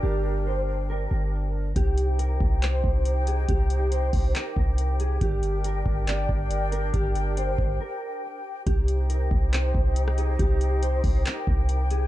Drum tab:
HH |----------------|x-x-x---x---x-x-|x-x-x-o-x---x-x-|x-x-x---x---x-x-|
CP |----------------|--------x-------|--------x-------|--------x-------|
SD |----------------|----------------|----------------|----------------|
BD |----------------|o-----o---o-----|o-----o---o-----|o-----o---o-----|

HH |x-x-x-----------|x-x-x---x---x-x-|x-x-x-o-x---x-x-|
CP |----------------|--------x-------|--------x-------|
SD |----------------|-------------r--|----------------|
BD |o-----o---------|o-----o---o-----|o-----o---o-----|